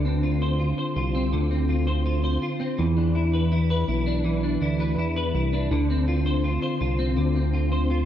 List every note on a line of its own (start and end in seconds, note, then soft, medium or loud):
0.00 0.74 D2 medium
0.00 1.32 D3 medium
0.05 1.14 C4 medium
0.23 0.58 F4 soft
0.42 0.77 C5 medium
0.59 0.95 F4 medium
0.78 1.86 C5 medium
0.96 1.34 C2 medium
0.96 1.68 F4 medium
1.15 1.50 C4 medium
1.33 2.38 D2 medium
1.33 2.78 D3 medium
1.51 2.59 C4 medium
1.69 2.04 F4 medium
1.87 2.23 C5 medium
2.06 2.41 F4 medium
2.24 2.86 C5 medium
2.42 2.86 F4 medium
2.60 2.86 C4 medium
2.78 3.85 E2 loud
2.78 4.23 E3 medium
2.97 4.06 D4 soft
3.15 3.51 E4 soft
3.33 3.69 B4 medium
3.52 3.87 E4 medium
3.70 4.79 B4 medium
3.88 4.58 B1 medium
3.88 4.60 E4 medium
4.06 4.43 D4 medium
4.25 5.71 E3 medium
4.43 5.53 D4 soft
4.61 4.96 D2 medium
4.61 4.97 E4 medium
4.80 5.15 B4 medium
4.98 5.33 E2 medium
4.98 5.34 E4 medium
5.16 5.79 B4 medium
5.34 5.69 C2 medium
5.34 5.79 E4 medium
5.53 5.90 D4 medium
5.71 6.59 D2 loud
5.71 7.17 D3 medium
5.90 6.98 C4 soft
6.08 6.43 F4 medium
6.26 6.61 C5 medium
6.44 6.80 F4 medium
6.62 7.71 C5 medium
6.81 7.19 C2 medium
6.81 7.52 F4 medium
6.99 7.34 C4 medium
7.17 8.05 D2 loud
7.17 8.05 D3 medium
7.35 8.05 C4 medium
7.53 7.89 F4 medium
7.72 8.05 C5 medium
7.90 8.05 F4 medium